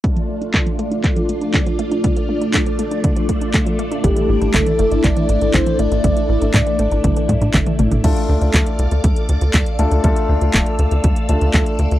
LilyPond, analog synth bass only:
\new Staff \with { instrumentName = "Analog synth bass" } { \clef bass \time 4/4 \key d \minor \tempo 4 = 120 r1 | r1 | a,,16 r16 a,,16 a,,16 a,,16 r16 g,,16 a,,16 a,,16 r16 a,,16 a,,16 a,,16 r16 a,,16 a,,16 | a,,16 r16 a,,16 a,,16 a,16 r16 a,,16 a,,16 a,,16 r16 a,16 a,16 a,,16 r16 a,,16 a,,16 |
d,16 r16 d,16 d,16 d,16 r16 c,16 d,16 d,16 r16 d,16 d,16 d,16 r16 d,16 d,16 | d,16 r16 d,16 d,16 d,,16 r16 d,16 d,16 d,16 r16 d,16 d,16 d,16 r16 d,16 d,16 | }